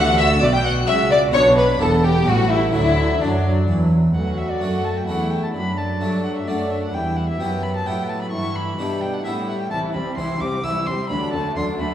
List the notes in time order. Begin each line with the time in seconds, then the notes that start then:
Already playing: D2 D3 A3 D4 F#4 F#5
0.18 E5 E6
0.41 B1 B2 F#4 D5 D6
0.53 G5 G6
0.65 F#5 F#6
0.88 C#2 C#3 E5 E6
1.11 D5 D6
1.32 B1 B2 B3 D4 C#5 C#6
1.58 B4 B5
1.78 E1 E2 B3 E4 A4 A5
2.04 G4 G5
2.24 A1 A2 G3 A3 C#4 F#4 F#5
2.50 E4 E5
2.71 D2 D3 F#3 A3 D4 E4 E5
3.21 F#2 F#3 D4 D5
3.68 E2 E3
4.14 D2 F#3 F#4 B4 F#5
4.38 E5
4.51 D5
4.61 F#2 A3 D4 F#4 A4 F#5
4.85 A5
4.97 G5
5.07 E2 A3 D4 E4 F#4 A4 F#5
5.31 G5
5.43 A5
5.54 F#2 F#3 D4 B5
5.78 A5
6.01 G2 F#3 A3 D4 F#4 C#5
6.24 F#5
6.37 E5
6.47 F#2 A3 D4 F#4 D5
6.70 E5
6.83 F#5
6.94 E2 G3 E4 B4 G5
7.17 F#5
7.29 E5
7.40 F#2 F#3 B3 E4 G4 B4 G5
7.63 B5
7.76 A5
7.86 A2 B3 E4 G4 B4 G5
8.09 A5
8.22 B5
8.32 G2 E3 E4 A4 C#6
8.56 B5
8.79 B2 G3 B3 D4 E4 G4
9.01 G5
9.14 F#5
9.24 A2 G3 B3 E4 G4 E5
9.48 F#5
9.60 G5
9.71 C2 E3 E4 C5 A5
9.94 C2 G3 C4 G4 B5
10.17 C2 E3 E4 G4 C5 C6
10.40 C2 G3 C4 G4 D6
10.63 C2 E3 E4 G4 C5 E6
10.87 C2 G3 C4 G4 C6
11.10 D2 F#3 D4 A4 B5
11.33 D2 D3 A3 F#4 A5
11.56 D2 F#3 D4 A4 C6
11.79 D2 D3 A3 F#4 B5